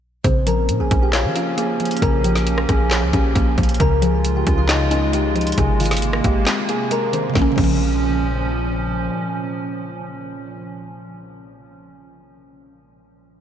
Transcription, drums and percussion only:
0.24 kick loud
0.24 closed hi-hat medium
0.47 closed hi-hat medium
0.69 closed hi-hat loud
0.91 kick loud
0.91 closed hi-hat medium
1.13 snare loud
1.13 clap loud
1.13 closed hi-hat medium
1.36 closed hi-hat medium
1.58 closed hi-hat medium
1.80 closed hi-hat soft
1.85 closed hi-hat medium
1.91 closed hi-hat medium
1.97 closed hi-hat medium
2.02 kick loud
2.02 closed hi-hat medium
2.24 closed hi-hat medium
2.36 snare medium
2.47 closed hi-hat loud
2.58 cross-stick loud
2.69 kick loud
2.69 cross-stick medium
2.69 closed hi-hat medium
2.91 snare loud
2.91 clap loud
2.91 closed hi-hat medium
3.13 kick medium
3.13 closed hi-hat medium
3.35 kick loud
3.35 closed hi-hat medium
3.58 kick medium
3.58 closed hi-hat soft
3.63 closed hi-hat medium
3.69 closed hi-hat medium
3.74 closed hi-hat medium
3.80 kick loud
3.80 closed hi-hat medium
4.02 closed hi-hat medium
4.25 closed hi-hat loud
4.47 kick loud
4.47 closed hi-hat medium
4.69 snare loud
4.69 clap loud
4.69 closed hi-hat medium
4.91 closed hi-hat medium
5.13 closed hi-hat medium
5.36 closed hi-hat soft
5.41 closed hi-hat medium
5.47 closed hi-hat medium
5.52 closed hi-hat medium
5.58 kick loud
5.58 closed hi-hat medium
5.80 closed hi-hat soft
5.80 open hi-hat medium
5.86 closed hi-hat medium
5.91 snare medium
5.91 closed hi-hat medium
5.97 closed hi-hat medium
6.02 closed hi-hat loud
6.13 cross-stick loud
6.24 kick loud
6.24 closed hi-hat medium
6.47 snare loud
6.47 clap loud
6.47 closed hi-hat medium
6.69 closed hi-hat medium
6.91 closed hi-hat medium
7.13 closed hi-hat medium
7.35 kick loud
7.35 snare medium
7.58 kick loud
7.58 crash medium

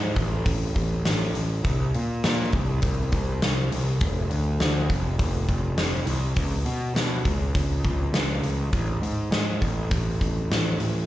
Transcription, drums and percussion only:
0.16 kick medium
0.16 open hi-hat soft
0.46 kick medium
0.46 open hi-hat medium
0.75 kick medium
0.75 open hi-hat soft
1.05 snare medium
1.05 open hi-hat medium
1.35 open hi-hat soft
1.64 kick medium
1.64 open hi-hat medium
1.94 open hi-hat soft
2.24 snare medium
2.24 open hi-hat soft
2.52 kick medium
2.52 open hi-hat soft
2.82 kick medium
2.82 open hi-hat medium
3.12 kick medium
3.12 open hi-hat soft
3.42 snare medium
3.42 open hi-hat medium
3.72 open hi-hat soft
4.01 kick medium
4.01 open hi-hat soft
4.31 open hi-hat soft
4.60 snare medium
4.60 open hi-hat soft
4.90 kick medium
4.90 open hi-hat soft
5.19 kick medium
5.19 open hi-hat medium
5.48 kick medium
5.48 open hi-hat soft
5.78 snare medium
5.78 open hi-hat medium
6.07 open hi-hat soft
6.36 kick medium
6.36 open hi-hat medium
6.66 open hi-hat soft
6.96 snare medium
6.96 open hi-hat medium
7.25 kick medium
7.25 open hi-hat soft
7.55 kick medium
7.55 open hi-hat medium
7.85 kick medium
7.85 open hi-hat soft
8.14 snare medium
8.14 open hi-hat medium
8.43 open hi-hat soft
8.73 kick medium
8.73 open hi-hat medium
9.03 open hi-hat soft
9.32 snare medium
9.32 open hi-hat medium
9.62 kick medium
9.62 open hi-hat soft
9.91 kick medium
9.91 open hi-hat medium
10.21 kick medium
10.21 open hi-hat soft
10.51 snare medium
10.51 open hi-hat medium
10.80 open hi-hat soft

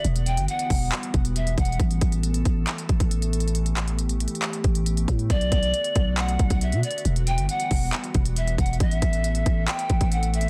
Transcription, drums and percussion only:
0.04 closed hi-hat medium
0.16 closed hi-hat medium
0.26 closed hi-hat medium
0.37 closed hi-hat medium
0.48 closed hi-hat medium
0.59 closed hi-hat medium
0.70 kick medium
0.70 open hi-hat medium
0.92 clap loud
0.92 closed hi-hat medium
1.03 closed hi-hat medium
1.14 kick medium
1.14 closed hi-hat medium
1.25 closed hi-hat medium
1.36 closed hi-hat medium
1.47 closed hi-hat medium
1.58 kick medium
1.58 closed hi-hat medium
1.65 closed hi-hat medium
1.72 closed hi-hat soft
1.80 kick loud
1.80 closed hi-hat medium
1.91 closed hi-hat medium
2.01 kick medium
2.01 closed hi-hat medium
2.12 closed hi-hat medium
2.23 closed hi-hat medium
2.34 closed hi-hat medium
2.45 kick medium
2.45 closed hi-hat medium
2.67 clap loud
2.67 closed hi-hat medium
2.78 closed hi-hat medium
2.89 kick loud
2.89 closed hi-hat medium
3.00 kick medium
3.00 closed hi-hat medium
3.11 closed hi-hat medium
3.22 closed hi-hat medium
3.33 closed hi-hat medium
3.40 closed hi-hat medium
3.48 closed hi-hat soft
3.55 closed hi-hat medium
3.66 closed hi-hat medium
3.77 clap loud
3.77 closed hi-hat medium
3.88 closed hi-hat medium
3.99 closed hi-hat medium
4.09 closed hi-hat medium
4.20 closed hi-hat medium
4.20 open hi-hat medium
4.28 closed hi-hat medium
4.35 closed hi-hat soft
4.42 clap loud
4.42 closed hi-hat medium
4.53 closed hi-hat medium
4.64 kick medium
4.64 closed hi-hat medium
4.75 closed hi-hat medium
4.86 closed hi-hat medium
4.97 closed hi-hat medium
5.08 kick medium
5.08 closed hi-hat medium
5.19 closed hi-hat soft
5.30 kick loud
5.30 closed hi-hat medium
5.41 closed hi-hat medium
5.52 kick loud
5.52 closed hi-hat medium
5.63 closed hi-hat medium
5.74 closed hi-hat medium
5.84 closed hi-hat medium
5.96 kick medium
5.96 closed hi-hat medium
6.17 clap loud
6.17 closed hi-hat medium
6.28 closed hi-hat medium
6.39 kick loud
6.39 closed hi-hat medium
6.50 kick medium
6.50 closed hi-hat medium
6.61 closed hi-hat medium
6.72 closed hi-hat medium
6.83 closed hi-hat medium
6.91 closed hi-hat medium
6.98 closed hi-hat soft
7.05 closed hi-hat medium
7.16 closed hi-hat medium
7.27 closed hi-hat medium
7.38 closed hi-hat medium
7.49 closed hi-hat medium
7.60 closed hi-hat medium
7.71 kick medium
7.71 open hi-hat medium
7.93 clap loud
7.93 closed hi-hat medium
8.04 closed hi-hat medium
8.14 kick loud
8.14 closed hi-hat medium
8.25 closed hi-hat medium
8.36 closed hi-hat medium
8.47 closed hi-hat medium
8.58 kick medium
8.58 closed hi-hat medium
8.66 closed hi-hat medium
8.73 closed hi-hat soft
8.80 kick loud
8.80 closed hi-hat medium
8.91 closed hi-hat medium
9.02 kick medium
9.02 closed hi-hat medium
9.13 closed hi-hat medium
9.24 closed hi-hat medium
9.35 closed hi-hat medium
9.46 kick medium
9.46 closed hi-hat medium
9.68 clap loud
9.68 closed hi-hat medium
9.79 closed hi-hat medium
9.90 kick loud
9.90 closed hi-hat medium
10.01 kick medium
10.01 closed hi-hat medium
10.12 closed hi-hat medium
10.23 closed hi-hat medium
10.34 closed hi-hat medium
10.41 closed hi-hat medium

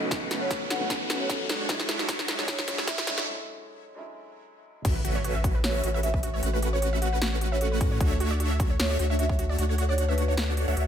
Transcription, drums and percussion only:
0.11 kick loud
0.11 snare medium
0.11 closed hi-hat medium
0.31 snare medium
0.31 closed hi-hat medium
0.51 kick loud
0.51 snare medium
0.51 closed hi-hat medium
0.70 snare medium
0.70 closed hi-hat medium
0.90 kick medium
0.90 snare medium
0.90 closed hi-hat medium
1.10 snare medium
1.10 closed hi-hat medium
1.29 kick loud
1.29 snare medium
1.29 closed hi-hat medium
1.49 snare medium
1.49 closed hi-hat medium
1.69 kick loud
1.69 snare medium
1.69 closed hi-hat medium
1.80 snare medium
1.89 snare medium
1.89 closed hi-hat medium
1.99 snare medium
2.08 kick loud
2.08 snare loud
2.08 closed hi-hat medium
2.19 snare medium
2.28 snare medium
2.28 closed hi-hat medium
2.39 snare medium
2.48 kick loud
2.48 snare loud
2.48 closed hi-hat medium
2.59 snare medium
2.68 snare loud
2.68 closed hi-hat medium
2.78 snare medium
2.87 kick loud
2.87 snare loud
2.87 closed hi-hat medium
2.98 snare medium
3.07 snare loud
3.07 closed hi-hat medium
3.18 snare medium
4.85 kick loud
4.85 closed hi-hat medium
4.85 crash loud
5.05 closed hi-hat medium
5.24 closed hi-hat medium
5.44 kick loud
5.44 closed hi-hat medium
5.64 snare loud
5.64 closed hi-hat medium
5.84 closed hi-hat medium
6.03 closed hi-hat medium
6.14 kick medium
6.23 closed hi-hat medium
6.43 closed hi-hat medium
6.62 closed hi-hat medium
6.82 closed hi-hat medium
7.02 closed hi-hat medium
7.22 snare loud
7.22 closed hi-hat medium
7.41 closed hi-hat medium
7.61 closed hi-hat medium
7.81 kick loud
7.81 closed hi-hat medium
8.01 kick loud
8.01 closed hi-hat medium
8.20 closed hi-hat medium
8.40 closed hi-hat medium
8.60 kick loud
8.60 closed hi-hat medium
8.80 snare loud
8.80 closed hi-hat medium
8.99 closed hi-hat medium
9.19 closed hi-hat medium
9.29 kick medium
9.39 closed hi-hat medium
9.59 closed hi-hat medium
9.78 closed hi-hat medium
9.98 closed hi-hat medium
10.18 closed hi-hat medium
10.37 snare loud
10.37 closed hi-hat medium
10.57 closed hi-hat medium
10.77 closed hi-hat medium

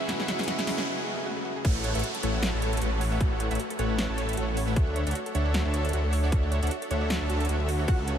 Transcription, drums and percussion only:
0.09 snare medium
0.09 closed hi-hat medium
0.20 snare medium
0.28 snare loud
0.28 closed hi-hat medium
0.39 snare medium
0.39 closed hi-hat medium
0.43 closed hi-hat medium
0.48 snare loud
0.48 closed hi-hat medium
0.59 snare medium
0.59 closed hi-hat medium
0.67 snare loud
0.67 open hi-hat loud
0.78 snare medium
1.65 kick loud
1.65 closed hi-hat medium
1.65 crash loud
1.84 closed hi-hat medium
1.95 closed hi-hat medium
1.99 closed hi-hat medium
2.04 closed hi-hat medium
2.15 closed hi-hat medium
2.23 closed hi-hat medium
2.43 snare loud
2.43 closed hi-hat medium
2.62 closed hi-hat medium
2.73 closed hi-hat medium
2.77 closed hi-hat medium
2.82 closed hi-hat medium
3.01 open hi-hat medium
3.21 kick loud
3.21 closed hi-hat medium
3.40 closed hi-hat medium
3.51 closed hi-hat soft
3.55 closed hi-hat medium
3.60 closed hi-hat medium
3.70 closed hi-hat medium
3.79 closed hi-hat medium
3.98 snare loud
3.98 closed hi-hat medium
4.18 closed hi-hat medium
4.29 closed hi-hat soft
4.33 closed hi-hat medium
4.37 closed hi-hat medium
4.57 open hi-hat medium
4.76 kick loud
4.76 closed hi-hat medium
4.96 closed hi-hat medium
5.07 closed hi-hat soft
5.11 closed hi-hat medium
5.15 closed hi-hat medium
5.26 closed hi-hat medium
5.35 closed hi-hat medium
5.54 snare loud
5.54 closed hi-hat medium
5.74 closed hi-hat medium
5.85 closed hi-hat soft
5.89 closed hi-hat medium
5.93 closed hi-hat medium
6.13 open hi-hat medium
6.32 kick loud
6.32 closed hi-hat medium
6.52 closed hi-hat medium
6.63 closed hi-hat soft
6.67 closed hi-hat medium
6.71 closed hi-hat medium
6.82 closed hi-hat medium
6.91 closed hi-hat medium
7.10 snare loud
7.10 closed hi-hat medium
7.30 closed hi-hat medium
7.40 closed hi-hat soft
7.45 closed hi-hat medium
7.49 closed hi-hat medium
7.69 open hi-hat medium
7.88 kick loud
7.88 closed hi-hat medium
7.88 crash soft
8.08 closed hi-hat medium

